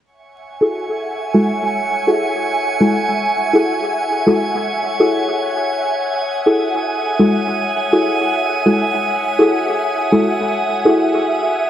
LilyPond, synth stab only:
\new Staff \with { instrumentName = "Synth stab" } { \time 4/4 \key fis \dorian \tempo 4 = 164 r4. <e' fis' gis' a'>2 <gis e' fis' a'>8 | r4. <e' fis' gis' a'>2 <gis e' fis' a'>8 | r4. <e' fis' gis' a'>2 <gis e' fis' a'>8 | r4. <e' fis' gis' a'>2 r8 |
r4. <e' fis' gis' a'>2 <gis e' fis' a'>8 | r4. <e' fis' gis' a'>2 <gis e' fis' a'>8 | r4. <e' fis' gis' a'>2 <gis e' fis' a'>8 | r4. <e' fis' gis' a'>2 r8 | }